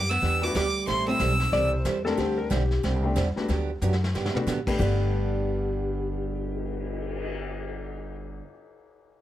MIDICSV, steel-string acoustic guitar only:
0, 0, Header, 1, 2, 480
1, 0, Start_track
1, 0, Key_signature, 1, "major"
1, 0, Tempo, 326087
1, 1288, Time_signature, 4, 2, 24, 8
1, 13563, End_track
2, 0, Start_track
2, 0, Title_t, "Steel-string acoustic guitar"
2, 0, Program_c, 0, 25
2, 317, Note_on_c, 0, 52, 51
2, 317, Note_on_c, 0, 59, 51
2, 327, Note_on_c, 0, 62, 59
2, 330, Note_on_c, 0, 67, 61
2, 628, Note_off_c, 0, 52, 0
2, 628, Note_off_c, 0, 59, 0
2, 633, Note_off_c, 0, 62, 0
2, 634, Note_off_c, 0, 67, 0
2, 796, Note_on_c, 0, 52, 68
2, 800, Note_on_c, 0, 59, 71
2, 807, Note_on_c, 0, 62, 84
2, 810, Note_on_c, 0, 67, 85
2, 967, Note_off_c, 0, 52, 0
2, 968, Note_off_c, 0, 59, 0
2, 972, Note_off_c, 0, 62, 0
2, 973, Note_off_c, 0, 67, 0
2, 1280, Note_on_c, 0, 52, 65
2, 1283, Note_on_c, 0, 55, 67
2, 1287, Note_on_c, 0, 60, 66
2, 1291, Note_on_c, 0, 64, 61
2, 1292, Note_on_c, 0, 69, 68
2, 1590, Note_off_c, 0, 52, 0
2, 1591, Note_off_c, 0, 55, 0
2, 1593, Note_off_c, 0, 60, 0
2, 1595, Note_off_c, 0, 64, 0
2, 1596, Note_off_c, 0, 69, 0
2, 1768, Note_on_c, 0, 52, 70
2, 1772, Note_on_c, 0, 55, 72
2, 1777, Note_on_c, 0, 60, 77
2, 1779, Note_on_c, 0, 64, 74
2, 1784, Note_on_c, 0, 69, 84
2, 1933, Note_off_c, 0, 52, 0
2, 1935, Note_off_c, 0, 55, 0
2, 1937, Note_off_c, 0, 60, 0
2, 1939, Note_off_c, 0, 64, 0
2, 1941, Note_off_c, 0, 69, 0
2, 2259, Note_on_c, 0, 52, 51
2, 2260, Note_on_c, 0, 55, 52
2, 2267, Note_on_c, 0, 60, 58
2, 2271, Note_on_c, 0, 64, 59
2, 2274, Note_on_c, 0, 69, 63
2, 2560, Note_off_c, 0, 52, 0
2, 2560, Note_off_c, 0, 55, 0
2, 2564, Note_off_c, 0, 60, 0
2, 2566, Note_off_c, 0, 64, 0
2, 2567, Note_off_c, 0, 69, 0
2, 2722, Note_on_c, 0, 52, 73
2, 2725, Note_on_c, 0, 55, 70
2, 2727, Note_on_c, 0, 60, 82
2, 2733, Note_on_c, 0, 64, 72
2, 2736, Note_on_c, 0, 69, 81
2, 2890, Note_off_c, 0, 52, 0
2, 2892, Note_off_c, 0, 55, 0
2, 2893, Note_off_c, 0, 60, 0
2, 2896, Note_off_c, 0, 64, 0
2, 2898, Note_off_c, 0, 69, 0
2, 3200, Note_on_c, 0, 50, 69
2, 3203, Note_on_c, 0, 55, 63
2, 3207, Note_on_c, 0, 60, 63
2, 3212, Note_on_c, 0, 67, 62
2, 3215, Note_on_c, 0, 62, 59
2, 3511, Note_off_c, 0, 50, 0
2, 3512, Note_off_c, 0, 55, 0
2, 3514, Note_off_c, 0, 60, 0
2, 3517, Note_off_c, 0, 67, 0
2, 3519, Note_off_c, 0, 62, 0
2, 3679, Note_on_c, 0, 50, 71
2, 3689, Note_on_c, 0, 55, 84
2, 3691, Note_on_c, 0, 60, 71
2, 3697, Note_on_c, 0, 62, 84
2, 3700, Note_on_c, 0, 67, 74
2, 3849, Note_off_c, 0, 50, 0
2, 3854, Note_off_c, 0, 55, 0
2, 3856, Note_off_c, 0, 60, 0
2, 3859, Note_off_c, 0, 62, 0
2, 3860, Note_off_c, 0, 67, 0
2, 4170, Note_on_c, 0, 50, 54
2, 4171, Note_on_c, 0, 55, 58
2, 4175, Note_on_c, 0, 60, 61
2, 4176, Note_on_c, 0, 67, 62
2, 4180, Note_on_c, 0, 62, 61
2, 4476, Note_off_c, 0, 50, 0
2, 4477, Note_off_c, 0, 55, 0
2, 4478, Note_off_c, 0, 60, 0
2, 4479, Note_off_c, 0, 67, 0
2, 4481, Note_off_c, 0, 62, 0
2, 4646, Note_on_c, 0, 50, 69
2, 4648, Note_on_c, 0, 60, 86
2, 4650, Note_on_c, 0, 55, 76
2, 4655, Note_on_c, 0, 62, 80
2, 4655, Note_on_c, 0, 67, 79
2, 4813, Note_off_c, 0, 50, 0
2, 4814, Note_off_c, 0, 60, 0
2, 4815, Note_off_c, 0, 55, 0
2, 4818, Note_off_c, 0, 62, 0
2, 4818, Note_off_c, 0, 67, 0
2, 5131, Note_on_c, 0, 50, 64
2, 5138, Note_on_c, 0, 54, 61
2, 5139, Note_on_c, 0, 59, 59
2, 5146, Note_on_c, 0, 62, 70
2, 5149, Note_on_c, 0, 67, 61
2, 5437, Note_off_c, 0, 50, 0
2, 5440, Note_off_c, 0, 54, 0
2, 5441, Note_off_c, 0, 59, 0
2, 5444, Note_off_c, 0, 62, 0
2, 5446, Note_off_c, 0, 67, 0
2, 5623, Note_on_c, 0, 50, 83
2, 5623, Note_on_c, 0, 54, 69
2, 5632, Note_on_c, 0, 59, 81
2, 5637, Note_on_c, 0, 62, 73
2, 5638, Note_on_c, 0, 67, 77
2, 5782, Note_off_c, 0, 50, 0
2, 5782, Note_off_c, 0, 54, 0
2, 5786, Note_off_c, 0, 59, 0
2, 5789, Note_off_c, 0, 62, 0
2, 5789, Note_off_c, 0, 67, 0
2, 6103, Note_on_c, 0, 50, 48
2, 6107, Note_on_c, 0, 54, 54
2, 6111, Note_on_c, 0, 62, 58
2, 6112, Note_on_c, 0, 59, 62
2, 6119, Note_on_c, 0, 67, 72
2, 6403, Note_off_c, 0, 50, 0
2, 6405, Note_off_c, 0, 54, 0
2, 6407, Note_off_c, 0, 59, 0
2, 6407, Note_off_c, 0, 62, 0
2, 6411, Note_off_c, 0, 67, 0
2, 6576, Note_on_c, 0, 50, 78
2, 6586, Note_on_c, 0, 59, 79
2, 6587, Note_on_c, 0, 54, 68
2, 6589, Note_on_c, 0, 62, 68
2, 6594, Note_on_c, 0, 67, 77
2, 6738, Note_off_c, 0, 50, 0
2, 6743, Note_off_c, 0, 59, 0
2, 6744, Note_off_c, 0, 54, 0
2, 6744, Note_off_c, 0, 62, 0
2, 6747, Note_off_c, 0, 67, 0
2, 7046, Note_on_c, 0, 43, 76
2, 7063, Note_on_c, 0, 50, 75
2, 7077, Note_on_c, 0, 59, 71
2, 7087, Note_on_c, 0, 62, 83
2, 7098, Note_on_c, 0, 67, 80
2, 12397, Note_off_c, 0, 43, 0
2, 12414, Note_off_c, 0, 50, 0
2, 12429, Note_off_c, 0, 59, 0
2, 12438, Note_off_c, 0, 62, 0
2, 12449, Note_off_c, 0, 67, 0
2, 13563, End_track
0, 0, End_of_file